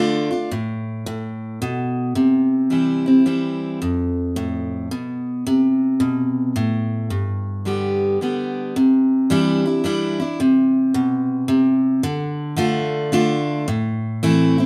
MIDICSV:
0, 0, Header, 1, 2, 480
1, 0, Start_track
1, 0, Key_signature, 0, "major"
1, 0, Tempo, 548446
1, 445, Time_signature, 3, 2, 24, 8
1, 12829, End_track
2, 0, Start_track
2, 0, Title_t, "Steel-string acoustic guitar"
2, 0, Program_c, 0, 25
2, 0, Note_on_c, 0, 50, 89
2, 0, Note_on_c, 0, 57, 96
2, 0, Note_on_c, 0, 62, 104
2, 0, Note_on_c, 0, 65, 107
2, 257, Note_off_c, 0, 50, 0
2, 257, Note_off_c, 0, 65, 0
2, 259, Note_off_c, 0, 57, 0
2, 264, Note_off_c, 0, 62, 0
2, 268, Note_on_c, 0, 65, 59
2, 285, Note_on_c, 0, 62, 54
2, 435, Note_off_c, 0, 65, 0
2, 444, Note_off_c, 0, 62, 0
2, 450, Note_on_c, 0, 45, 89
2, 921, Note_off_c, 0, 45, 0
2, 931, Note_on_c, 0, 45, 85
2, 1391, Note_off_c, 0, 45, 0
2, 1415, Note_on_c, 0, 47, 87
2, 1874, Note_off_c, 0, 47, 0
2, 1885, Note_on_c, 0, 48, 81
2, 2364, Note_on_c, 0, 52, 54
2, 2369, Note_on_c, 0, 55, 53
2, 2377, Note_on_c, 0, 60, 53
2, 2384, Note_on_c, 0, 64, 62
2, 2662, Note_off_c, 0, 52, 0
2, 2665, Note_off_c, 0, 55, 0
2, 2667, Note_off_c, 0, 64, 0
2, 2669, Note_off_c, 0, 60, 0
2, 2678, Note_on_c, 0, 64, 48
2, 2692, Note_on_c, 0, 60, 44
2, 2813, Note_off_c, 0, 48, 0
2, 2842, Note_off_c, 0, 64, 0
2, 2849, Note_off_c, 0, 60, 0
2, 2850, Note_on_c, 0, 52, 52
2, 2853, Note_on_c, 0, 55, 62
2, 2858, Note_on_c, 0, 60, 55
2, 2863, Note_on_c, 0, 64, 66
2, 3313, Note_off_c, 0, 52, 0
2, 3314, Note_off_c, 0, 55, 0
2, 3317, Note_off_c, 0, 60, 0
2, 3319, Note_off_c, 0, 64, 0
2, 3340, Note_on_c, 0, 41, 77
2, 3818, Note_on_c, 0, 45, 83
2, 4262, Note_off_c, 0, 41, 0
2, 4278, Note_off_c, 0, 45, 0
2, 4300, Note_on_c, 0, 47, 83
2, 4760, Note_off_c, 0, 47, 0
2, 4783, Note_on_c, 0, 48, 81
2, 5251, Note_on_c, 0, 47, 83
2, 5706, Note_off_c, 0, 48, 0
2, 5716, Note_off_c, 0, 47, 0
2, 5739, Note_on_c, 0, 45, 82
2, 6201, Note_off_c, 0, 45, 0
2, 6217, Note_on_c, 0, 43, 77
2, 6698, Note_on_c, 0, 50, 56
2, 6703, Note_on_c, 0, 55, 55
2, 6708, Note_on_c, 0, 59, 57
2, 6717, Note_on_c, 0, 67, 64
2, 7143, Note_off_c, 0, 43, 0
2, 7160, Note_off_c, 0, 50, 0
2, 7163, Note_off_c, 0, 55, 0
2, 7166, Note_off_c, 0, 59, 0
2, 7170, Note_off_c, 0, 67, 0
2, 7187, Note_on_c, 0, 50, 52
2, 7195, Note_on_c, 0, 55, 59
2, 7199, Note_on_c, 0, 59, 54
2, 7202, Note_on_c, 0, 67, 56
2, 7645, Note_off_c, 0, 50, 0
2, 7649, Note_off_c, 0, 55, 0
2, 7651, Note_off_c, 0, 59, 0
2, 7653, Note_off_c, 0, 67, 0
2, 7669, Note_on_c, 0, 48, 82
2, 8140, Note_on_c, 0, 52, 92
2, 8145, Note_on_c, 0, 55, 91
2, 8149, Note_on_c, 0, 62, 99
2, 8156, Note_on_c, 0, 64, 107
2, 8434, Note_off_c, 0, 52, 0
2, 8437, Note_off_c, 0, 55, 0
2, 8439, Note_off_c, 0, 62, 0
2, 8441, Note_off_c, 0, 64, 0
2, 8451, Note_on_c, 0, 64, 59
2, 8463, Note_on_c, 0, 62, 49
2, 8588, Note_off_c, 0, 48, 0
2, 8610, Note_on_c, 0, 52, 81
2, 8613, Note_off_c, 0, 64, 0
2, 8614, Note_off_c, 0, 62, 0
2, 8617, Note_on_c, 0, 55, 83
2, 8625, Note_on_c, 0, 62, 92
2, 8627, Note_on_c, 0, 64, 92
2, 8909, Note_off_c, 0, 52, 0
2, 8913, Note_off_c, 0, 55, 0
2, 8914, Note_off_c, 0, 64, 0
2, 8917, Note_off_c, 0, 62, 0
2, 8924, Note_on_c, 0, 64, 64
2, 8941, Note_on_c, 0, 62, 51
2, 9089, Note_off_c, 0, 64, 0
2, 9097, Note_off_c, 0, 62, 0
2, 9101, Note_on_c, 0, 48, 92
2, 9578, Note_on_c, 0, 47, 93
2, 10023, Note_off_c, 0, 48, 0
2, 10039, Note_off_c, 0, 47, 0
2, 10049, Note_on_c, 0, 48, 92
2, 10514, Note_off_c, 0, 48, 0
2, 10531, Note_on_c, 0, 50, 93
2, 10986, Note_off_c, 0, 50, 0
2, 10997, Note_on_c, 0, 50, 92
2, 11006, Note_on_c, 0, 57, 92
2, 11008, Note_on_c, 0, 62, 97
2, 11015, Note_on_c, 0, 65, 105
2, 11467, Note_off_c, 0, 50, 0
2, 11471, Note_off_c, 0, 57, 0
2, 11472, Note_off_c, 0, 62, 0
2, 11476, Note_off_c, 0, 65, 0
2, 11483, Note_on_c, 0, 50, 79
2, 11489, Note_on_c, 0, 57, 90
2, 11492, Note_on_c, 0, 62, 97
2, 11498, Note_on_c, 0, 65, 103
2, 11949, Note_off_c, 0, 50, 0
2, 11953, Note_off_c, 0, 57, 0
2, 11954, Note_off_c, 0, 62, 0
2, 11957, Note_off_c, 0, 65, 0
2, 11971, Note_on_c, 0, 45, 94
2, 12452, Note_on_c, 0, 52, 94
2, 12457, Note_on_c, 0, 57, 90
2, 12462, Note_on_c, 0, 60, 87
2, 12462, Note_on_c, 0, 64, 101
2, 12747, Note_off_c, 0, 52, 0
2, 12750, Note_off_c, 0, 57, 0
2, 12752, Note_off_c, 0, 60, 0
2, 12752, Note_off_c, 0, 64, 0
2, 12762, Note_on_c, 0, 64, 58
2, 12778, Note_on_c, 0, 60, 50
2, 12829, Note_off_c, 0, 45, 0
2, 12829, Note_off_c, 0, 60, 0
2, 12829, Note_off_c, 0, 64, 0
2, 12829, End_track
0, 0, End_of_file